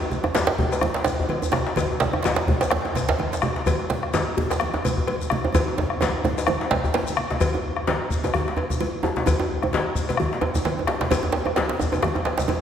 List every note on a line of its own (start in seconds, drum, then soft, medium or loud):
0.01 djembe tone medium
0.01 high conga soft
0.11 high conga medium
0.11 shekere soft
0.24 bombo rim medium
0.24 djembe tone medium
0.35 cowbell soft
0.35 djembe slap medium
0.35 djembe tone medium
0.35 high conga soft
0.35 low conga medium
0.35 shekere medium
0.47 bombo rim soft
0.47 djembe slap medium
0.58 bombo low medium
0.58 high conga medium
0.58 djembe bass medium
0.72 bombo rim soft
0.72 cowbell soft
0.72 djembe tone medium
0.72 shekere soft
0.81 bombo rim medium
0.81 djembe slap soft
0.81 djembe tone medium
0.81 low conga medium
0.94 bombo rim soft
0.94 djembe slap medium
0.96 djembe slap medium
1.04 cowbell soft
1.04 djembe slap loud
1.04 high conga medium
1.04 shekere medium
1.19 bombo low medium
1.19 djembe tone medium
1.19 djembe bass medium
1.29 cowbell soft
1.29 low conga medium
1.42 djembe slap soft
1.42 djembe tone medium
1.42 shekere soft
1.52 bombo rim medium
1.52 djembe slap medium
1.52 djembe tone medium
1.52 high conga medium
1.66 djembe slap medium
1.66 high conga soft
1.76 bombo low medium
1.76 cowbell medium
1.76 low conga medium
1.76 djembe bass medium
1.76 shekere medium
1.90 high conga soft
1.90 djembe tone medium
2.00 djembe slap loud
2.00 high conga medium
2.00 shekere soft
2.13 bombo rim medium
2.13 djembe tone medium
2.23 cowbell medium
2.23 djembe slap medium
2.23 high conga soft
2.23 low conga medium
2.23 shekere medium
2.25 djembe slap medium
2.25 djembe tone medium
2.36 bombo rim soft
2.36 djembe slap medium
2.47 bombo low loud
2.47 djembe tone medium
2.47 high conga medium
2.47 djembe bass medium
2.60 bombo rim soft
2.60 cowbell soft
2.60 djembe slap medium
2.60 djembe tone medium
2.60 shekere soft
2.70 bombo rim medium
2.70 djembe slap loud
2.70 djembe slap soft
2.70 low conga medium
2.84 bombo rim soft
2.84 djembe slap soft
2.84 djembe tone medium
2.95 cowbell soft
2.95 djembe slap medium
2.95 high conga medium
2.95 shekere medium
3.08 bombo low medium
3.08 djembe slap loud
3.08 djembe tone soft
3.08 djembe bass medium
3.19 cowbell soft
3.19 djembe tone medium
3.19 low conga medium
3.33 djembe slap soft
3.33 djembe slap medium
3.33 shekere soft
3.42 bombo rim loud
3.42 djembe tone medium
3.42 high conga medium
3.56 djembe slap medium
3.56 high conga soft
3.66 bombo low loud
3.66 cowbell medium
3.66 djembe bass medium
3.66 low conga medium
3.66 shekere medium
3.79 djembe tone medium
3.79 high conga soft
3.90 djembe slap medium
3.90 high conga medium
4.03 bombo rim medium
4.14 cowbell medium
4.14 djembe slap medium
4.14 djembe tone medium
4.14 high conga soft
4.14 djembe tone medium
4.14 low conga medium
4.14 shekere medium
4.26 bombo rim soft
4.37 bombo low loud
4.37 high conga medium
4.37 djembe bass medium
4.50 bombo rim soft
4.50 cowbell soft
4.50 djembe slap medium
4.50 djembe tone medium
4.50 shekere soft
4.60 bombo rim medium
4.60 djembe slap soft
4.60 low conga medium
4.73 bombo rim soft
4.73 djembe slap soft
4.73 djembe tone medium
4.85 cowbell medium
4.85 high conga medium
4.85 shekere medium
4.97 bombo low medium
4.97 djembe tone soft
4.97 djembe bass medium
5.07 cowbell medium
5.07 low conga medium
5.21 djembe slap soft
5.21 shekere soft
5.30 bombo rim medium
5.30 djembe tone medium
5.30 high conga medium
5.44 djembe tone medium
5.44 high conga soft
5.53 bombo low medium
5.53 cowbell medium
5.53 djembe tone loud
5.53 high conga soft
5.53 low conga medium
5.53 djembe bass medium
5.53 shekere medium
5.68 djembe tone medium
5.78 djembe slap soft
5.78 djembe tone loud
5.78 high conga medium
5.90 bombo rim medium
6.01 cowbell soft
6.01 djembe slap medium
6.01 djembe tone medium
6.01 low conga medium
6.01 shekere medium
6.02 djembe tone medium
6.13 bombo rim soft
6.24 bombo low loud
6.24 djembe tone medium
6.24 high conga medium
6.24 shekere soft
6.38 cowbell soft
6.38 high conga soft
6.38 djembe tone medium
6.38 shekere soft
6.47 bombo rim loud
6.47 djembe tone loud
6.47 low conga medium
6.61 djembe slap medium
6.61 high conga soft
6.71 bombo rim soft
6.71 cowbell medium
6.71 djembe slap loud
6.71 high conga medium
6.83 bombo low medium
6.83 djembe slap soft
6.83 djembe tone medium
6.83 djembe bass medium
6.83 shekere soft
6.94 cowbell soft
6.94 djembe slap loud
6.94 djembe slap soft
6.94 low conga medium
7.07 djembe slap soft
7.07 low conga soft
7.07 shekere soft
7.17 bombo rim loud
7.17 high conga medium
7.30 djembe slap medium
7.30 high conga medium
7.40 bombo low loud
7.40 cowbell medium
7.40 high conga soft
7.40 low conga medium
7.40 djembe bass medium
7.40 shekere medium
7.54 djembe tone medium
7.54 high conga soft
7.77 bombo rim medium
7.87 cowbell soft
7.87 djembe slap medium
7.87 djembe tone medium
7.87 low conga medium
8.01 bombo rim soft
8.10 bombo low loud
8.10 high conga soft
8.10 shekere medium
8.24 cowbell soft
8.24 djembe tone medium
8.24 high conga medium
8.24 shekere soft
8.34 bombo rim loud
8.34 low conga medium
8.34 djembe bass medium
8.48 djembe slap soft
8.57 cowbell soft
8.57 djembe tone medium
8.57 high conga soft
8.70 bombo low medium
8.70 djembe tone soft
8.70 high conga medium
8.70 shekere soft
8.81 cowbell soft
8.81 high conga soft
8.81 low conga medium
9.03 djembe slap soft
9.03 djembe tone loud
9.03 djembe tone medium
9.16 djembe slap medium
9.16 high conga medium
9.26 bombo low medium
9.26 cowbell medium
9.26 djembe tone medium
9.26 high conga soft
9.26 low conga medium
9.26 djembe bass medium
9.26 shekere medium
9.39 djembe tone loud
9.39 high conga soft
9.39 djembe tone medium
9.62 bombo rim medium
9.62 high conga medium
9.62 djembe tone medium
9.73 cowbell soft
9.73 djembe slap medium
9.73 djembe tone medium
9.73 low conga medium
9.86 bombo rim soft
9.95 bombo low loud
9.95 high conga soft
9.95 shekere medium
10.09 cowbell soft
10.09 djembe tone medium
10.09 high conga medium
10.09 shekere soft
10.17 bombo rim medium
10.17 djembe bass medium
10.17 low conga medium
10.33 djembe slap medium
10.41 cowbell medium
10.41 djembe tone medium
10.41 high conga soft
10.54 bombo low medium
10.54 high conga medium
10.54 djembe tone medium
10.54 shekere soft
10.65 cowbell soft
10.65 djembe slap medium
10.65 high conga soft
10.65 low conga medium
10.79 djembe tone medium
10.87 bombo rim medium
10.87 djembe slap medium
10.87 djembe slap soft
10.87 djembe tone medium
11.01 djembe slap medium
11.01 high conga medium
11.11 bombo low medium
11.11 cowbell medium
11.11 djembe tone medium
11.11 high conga soft
11.11 djembe bass medium
11.11 low conga medium
11.11 shekere medium
11.23 djembe tone medium
11.24 djembe tone medium
11.24 high conga soft
11.32 djembe slap medium
11.45 bombo rim medium
11.45 djembe tone medium
11.56 cowbell soft
11.56 djembe slap medium
11.56 djembe tone medium
11.56 low conga medium
11.69 bombo rim soft
11.69 djembe slap medium
11.79 bombo low medium
11.79 djembe tone medium
11.79 high conga soft
11.79 shekere medium
11.92 cowbell soft
11.92 djembe tone medium
11.92 high conga medium
11.92 shekere soft
12.02 bombo rim medium
12.02 djembe slap medium
12.02 djembe bass medium
12.02 low conga medium
12.15 djembe slap soft
12.15 djembe tone medium
12.25 cowbell soft
12.25 djembe slap medium
12.25 high conga soft
12.38 bombo low medium
12.38 djembe slap medium
12.38 djembe tone soft
12.38 high conga medium
12.38 shekere soft
12.48 cowbell soft
12.48 djembe tone loud
12.48 high conga soft
12.48 low conga medium